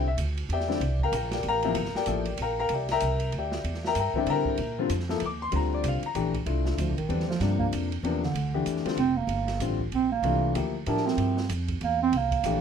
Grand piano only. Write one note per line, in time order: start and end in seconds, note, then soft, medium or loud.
0.08 0.14 E5 loud
0.53 0.98 G4 medium
0.53 0.99 D5 medium
0.53 0.98 E5 medium
0.53 0.98 G5 medium
0.68 0.80 D3 medium
0.68 0.80 G3 medium
0.68 0.80 C4 medium
0.68 0.80 E4 medium
1.03 1.14 A#4 medium
1.03 1.14 F5 medium
1.03 1.14 G5 medium
1.03 1.14 A#5 loud
1.15 1.33 A#4 medium
1.15 1.33 F5 medium
1.15 1.32 G5 medium
1.15 1.32 A#5 medium
1.34 1.45 G4 medium
1.34 1.45 A#4 medium
1.34 1.45 D5 medium
1.34 1.45 G5 medium
1.48 1.93 A#4 medium
1.48 1.93 F5 medium
1.48 1.93 G5 medium
1.48 1.93 A#5 loud
1.64 1.75 C3 medium
1.64 1.75 F3 medium
1.64 1.75 A#3 medium
1.64 1.75 E4 medium
1.97 2.36 G4 medium
1.97 2.37 A#4 medium
1.97 2.36 D5 medium
1.97 2.36 G5 medium
2.07 2.24 F3 medium
2.07 2.24 A#3 medium
2.07 2.24 E4 medium
2.07 2.24 A4 medium
2.42 2.59 A#4 medium
2.42 2.59 F5 medium
2.42 2.59 G5 medium
2.42 2.58 A#5 medium
2.60 2.71 A#4 medium
2.60 2.71 F5 medium
2.60 2.71 G5 medium
2.60 2.70 A#5 loud
2.74 2.91 G4 medium
2.74 2.90 D5 medium
2.74 2.91 E5 medium
2.74 2.90 G5 medium
2.92 3.31 A#4 medium
2.92 3.31 E5 loud
2.92 3.31 G5 medium
2.92 3.31 A#5 loud
3.38 3.82 G4 medium
3.38 3.83 D5 medium
3.38 3.83 E5 medium
3.38 3.83 G5 medium
3.87 3.97 A#4 medium
3.87 3.97 E5 medium
3.87 3.97 G5 medium
3.87 3.97 A#5 loud
4.00 4.16 A#4 medium
4.00 4.16 E5 medium
4.00 4.16 G5 medium
4.00 4.16 A#5 medium
4.15 4.56 D3 medium
4.15 4.56 G3 medium
4.15 4.56 C4 medium
4.15 4.56 E4 medium
4.15 4.28 G4 medium
4.15 4.28 D5 medium
4.15 4.28 E5 medium
4.15 4.28 G5 medium
4.30 4.76 A#4 medium
4.30 4.76 E5 medium
4.30 4.75 G5 medium
4.30 4.75 A#5 loud
4.79 4.89 D3 medium
4.79 4.89 G3 medium
4.79 4.89 C4 medium
4.79 4.89 F4 medium
5.09 5.20 F3 medium
5.09 5.20 A#3 medium
5.09 5.21 E4 medium
5.09 5.21 A4 medium
5.25 5.42 D6 loud
5.42 5.53 C6 loud
5.52 5.99 D3 medium
5.52 5.99 G3 medium
5.52 5.99 C4 medium
5.52 5.99 F4 medium
5.56 5.73 A#5 medium
5.74 5.85 D5 medium
5.88 6.04 F5 medium
6.06 6.34 A#5 medium
6.15 6.32 E3 medium
6.15 6.32 A3 medium
6.15 6.32 D4 medium
6.15 6.32 G4 medium
6.46 6.93 A3 medium
6.46 6.93 D4 medium
6.46 6.93 E4 medium
6.46 6.93 F4 medium
7.08 7.26 D3 medium
7.08 7.26 G3 medium
7.08 7.26 C4 medium
7.08 7.27 D4 medium
7.41 7.88 C3 medium
7.41 7.88 F3 medium
7.41 7.87 A#3 medium
7.41 7.88 D4 medium
8.03 8.21 C3 medium
8.03 8.21 F3 medium
8.03 8.21 A#3 medium
8.03 8.21 D4 medium
8.54 8.84 E3 medium
8.54 8.84 A3 medium
8.54 8.84 D4 medium
8.54 8.84 G4 medium
8.85 8.97 D3 medium
8.85 8.97 G3 medium
8.85 8.97 C4 medium
8.85 8.97 F4 medium
9.61 9.78 D3 medium
9.61 9.78 G3 medium
9.61 9.78 C4 medium
9.61 9.79 F4 medium
10.24 10.54 E3 medium
10.24 10.55 A3 medium
10.24 10.54 D4 medium
10.24 10.54 F4 medium
10.55 10.73 F3 medium
10.55 10.73 A#3 medium
10.55 10.73 E4 medium
10.55 10.73 G4 medium
10.87 11.33 F3 medium
10.87 11.34 E4 medium
10.87 11.34 G4 medium
10.87 11.34 A#4 medium
12.45 12.61 E3 medium
12.45 12.61 A3 medium
12.45 12.61 D4 medium
12.45 12.61 G4 medium